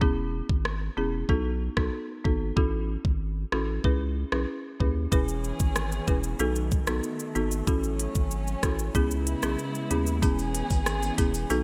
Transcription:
0.01 sub bass E1, marimba B3 C#4 E4 G#4, kick
0.49 sub bass G#1, kick
0.65 cross-stick
0.97 sub bass E1, marimba B3 C#4 E4 G#4
1.29 sub bass B1, marimba B3 D#4 F#4 A4, kick
1.77 sub bass B1, marimba B3 D#4 F#4 A4, kick, cross-stick
2.25 sub bass G#1, marimba B3 D#4 F#4 A4, kick
2.56 sub bass A1, marimba C#4 E4 F#4 A4, kick
3.05 sub bass G#1, kick
3.52 sub bass A1, marimba C#4 E4 F#4 A4, cross-stick
3.84 sub bass C#2, marimba C#4 E4 G#4 B4, kick
4.32 sub bass B1, marimba C#4 E4 G#4 B4, cross-stick
4.80 sub bass D#2, marimba C#4 E4 G#4 B4, kick
5.12 sub bass E1, string section E3 B3 C#4 G#4, marimba C#4 E4 G#4 B4, kick, shaker
5.28 shaker
5.44 shaker
5.60 sub bass G#1, kick, shaker
5.76 cross-stick, shaker
5.92 shaker
6.07 sub bass E1, marimba C#4 E4 G#4 B4, kick, shaker
6.24 shaker
6.39 sub bass B1, string section D#3 A3, marimba B3 D#4 F#4 A4, shaker
6.56 shaker
6.71 kick, shaker
6.87 sub bass B1, marimba B3 D#4 F#4 A4, cross-stick, shaker
7.03 shaker
7.20 shaker
7.35 sub bass G#1, marimba B3 D#4 F#4 A4, shaker
7.51 shaker
7.67 sub bass A1, string section F#3 C#4, marimba C#4 E4 F#4 A4, kick, shaker
7.84 shaker
7.99 closed hi-hat, shaker
8.15 sub bass G#1, kick, shaker
8.31 shaker
8.47 shaker
8.63 sub bass A1, marimba C#4 E4 F#4 A4, kick, cross-stick, closed hi-hat, shaker
8.79 shaker
8.95 sub bass C#2, string section C#3 G#3 B3 E4, marimba B3 C#4 E4 G#4, kick, shaker
9.11 shaker
9.27 closed hi-hat, shaker
9.43 sub bass B1, marimba B3 C#4 E4 G#4, cross-stick, shaker
9.59 shaker
9.75 shaker
9.90 sub bass D#2, marimba B3 C#4 E4 G#4, closed hi-hat, shaker
10.07 shaker
10.22 sub bass E1, string section E3 C#4 G#4, marimba B3 C#4 E4 G#4, kick, shaker
10.39 shaker
10.55 closed hi-hat, shaker
10.70 sub bass G#1, kick, shaker
10.86 cross-stick, shaker
11.03 shaker
11.18 sub bass E1, marimba B3 C#4 E4 G#4, kick, closed hi-hat, shaker
11.34 shaker
11.50 sub bass B1, string section D#3 A3, marimba B3 D#4 F#4 A4, shaker

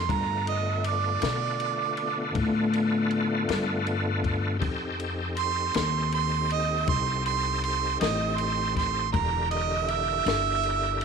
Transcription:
Already playing: harmonica C6
0.09 upright bass G2, tonewheel organ D3 A3 B3 F4, harmonica A#5, kick, ride
0.47 harmonica D#5, ride
0.84 harmonica D5, ride
1.22 upright bass B2, snare, ride
1.60 ride
1.97 ride
2.35 upright bass A2, kick, ride
2.73 ride
3.10 ride
3.49 upright bass G2, snare, ride
3.87 ride
4.24 kick, ride
4.59 upright bass F2, tonewheel organ C4 D#4 G4 A4, kick, ride
5.00 ride
5.37 harmonica C6, ride
5.74 upright bass D#2, harmonica C6, snare, ride
6.12 harmonica C6, ride
6.50 harmonica D#5, ride
6.87 upright bass C2, harmonica C6, kick, ride
7.26 harmonica C6, ride
7.64 harmonica C6, ride
8.01 upright bass A1, harmonica D#5, snare, ride
8.38 harmonica C6, ride
8.76 harmonica C6, kick, snare, ride
9.12 upright bass E1, tonewheel organ D3 E4 G4 A#4, harmonica A#5, kick, ride
9.51 harmonica D#5, ride
9.88 harmonica E5, ride
10.26 upright bass G1, snare, ride
10.63 ride
11.01 ride

